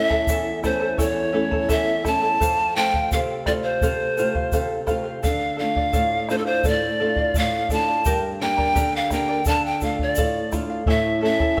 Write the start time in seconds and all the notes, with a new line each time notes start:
Already playing: A2 A3 C#4 E4 E5
0.10 E4 A4 A5, bombo low
0.27 E2 E4 A4 C#5 E5 A5, bombo low, shaker
0.63 A3 C#4 E4 A4 C5 E5 A5, bombo rim, bombo low, shaker
0.80 E4 A4 A5
0.98 E2 E4 A4 C#5 E5 A5, bombo low, shaker
1.33 A3 C#4 E4 A4 E5 A5
1.51 E4 A4 A5, bombo low
1.69 E2 E4 A4 C#5 E5 A5, bombo low, shaker
2.03 A3 C#4 E4 A4 E5 A5, bombo rim, bombo low, shaker
2.22 E4 A4 A5
2.40 F2 A4 C5 F5, bombo low, shaker
2.76 A3 C4 F4 A4 C5 F5 G5
2.94 C5 F5, bombo low
3.11 C3 A4 C5 F5, bombo low, shaker
3.46 A3 C4 F4 A4 C5 D5 F5, bombo rim, bombo low, shaker
3.64 C5 F5
3.81 C3 A4 C5 F5, bombo low, shaker
4.17 A3 C4 F4 A4 C5 F5, shaker
4.35 C5 F5, bombo low
4.52 C3 A4 C5 F5, bombo low, shaker
4.87 A3 C4 A4 C5 F5, bombo rim, bombo low, shaker
4.91 F4
5.04 C5 F5
5.23 D3 A4 D5 F5, bombo low, shaker
5.57 A3 A4 D5 F5
5.61 D4 F4
5.76 D5 F5, bombo low
5.93 A2 A4 D5 F5, bombo low, shaker
6.29 A3 D4 F4 A4 C5 D5 F5, bombo rim, shaker
6.38 A4
6.46 C5 D5 F5
6.64 A2 A4 D5 F5, bombo low, shaker
6.68 D5
7.00 A3 D4 F4 A4 D5 F5
7.16 D5 F5, bombo low
7.34 A2 A4 D5 F5, bombo low, shaker
7.38 F5
7.69 A3 D4 F4 A4 D5 F5 A5, bombo low, shaker
7.87 D5 F5
8.05 G2 G4 A#4 D5 G5, bombo low, shaker
8.40 A#3 D4 G4 A#4 D5 G5 A#5
8.57 A#4 D5 A#5, bombo low
8.75 D3 G4 A#4 D5 G5 A#5, bombo low, shaker
8.96 F5
9.10 A#3 D4 G4 A#4 D5 G5 A#5, bombo rim, bombo low, shaker
9.28 A#4 D5 A#5
9.45 D3 A4 D5 F5 A5, bombo low, shaker
9.66 G5
9.81 A3 D4 F4 A4 D5 F5, bombo low, shaker
9.99 D5 F5, bombo low
10.15 A2 A4 D5 F5, bombo low, shaker
10.52 A3 D4 F4 A4 D5 F5, bombo rim, bombo low, shaker
10.70 D5 F5
10.86 A2 E4 A4 C#5 E5 A5, bombo low
10.90 E5
11.21 A3 C#4 E4 A4 E5 A5
11.40 E4 A4 A5, bombo low
11.57 C#5